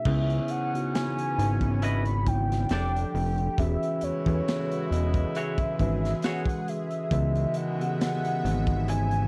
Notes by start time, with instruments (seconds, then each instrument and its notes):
Already playing: soft synth lead E5
0.05 analog synth bass C#2, horn section G#2 E3 C#4, tine electric piano C#3 B3 C#4 E4, analog synth pad E3 B3 C#4, kick, crash
0.30 closed hi-hat
0.48 soft synth lead F#5, closed hi-hat
0.74 tine electric piano C#3 B3 D#4 F#4, closed hi-hat
0.94 soft synth lead G#5, snare, closed hi-hat
1.18 closed hi-hat
1.38 analog synth bass G#1, closed hi-hat
1.61 kick, closed hi-hat
1.82 clean electric guitar E4 B4 D#5, soft synth lead B5, closed hi-hat
2.05 closed hi-hat
2.26 tine electric piano C#3 B3 D#4 E4, soft synth lead G5, kick, closed hi-hat
2.52 snare, closed hi-hat
2.69 analog synth bass F1, horn section A2 G3 D4, analog synth pad D3 A3 G4, tine electric piano F3 D4 G4 G#4, clean electric guitar G4 A4 D5, snare, closed hi-hat
2.78 tine electric piano A4
2.96 closed hi-hat
3.14 analog synth bass F1, open hi-hat
3.38 closed hi-hat
3.58 analog synth bass E1, horn section C#3 B3 E4, analog synth pad C#3 G#3 F#4, tine electric piano E3 C#4 F#4 G#4, soft synth lead E5, kick, closed hi-hat
3.83 closed hi-hat
4.01 analog synth bass E2, soft synth lead C#5, closed hi-hat
4.26 analog synth bass E2, tine electric piano E3 C#4 F#4 A4, kick, closed hi-hat
4.35 tine electric piano B4
4.48 snare, closed hi-hat
4.71 closed hi-hat
4.85 soft synth lead E5
4.91 analog synth bass E1, soft synth lead D#5, closed hi-hat
5.14 kick, closed hi-hat
5.33 clean electric guitar F#4 G#4, analog synth pad G#4, soft synth lead E5, closed hi-hat
5.38 clean electric guitar C#5
5.58 analog synth bass G#1, kick, closed hi-hat
5.79 analog synth bass G#1, tine electric piano E3 C#4 F#4 B4, soft synth lead E5, kick, closed hi-hat
6.05 snare, closed hi-hat
6.22 clean electric guitar F#4 G#4 C#5, soft synth lead F#5, snare, closed hi-hat
6.46 kick, closed hi-hat
6.68 soft synth lead E5, closed hi-hat
6.91 closed hi-hat
7.11 analog synth bass C#2, horn section B2 D#3 G#3, analog synth pad C#3 B3 E5, tine electric piano C#3 E3 B3 E5, kick, closed hi-hat
7.35 closed hi-hat
7.54 soft synth lead F#5, closed hi-hat
7.80 tine electric piano C#3 E3 B3 G4, closed hi-hat
7.88 tine electric piano G#4
8.01 snare, closed hi-hat
8.24 closed hi-hat
8.45 analog synth bass G#1, closed hi-hat
8.67 kick, closed hi-hat
8.88 soft synth lead G#5, muted clean electric guitar stroke, closed hi-hat
9.11 closed hi-hat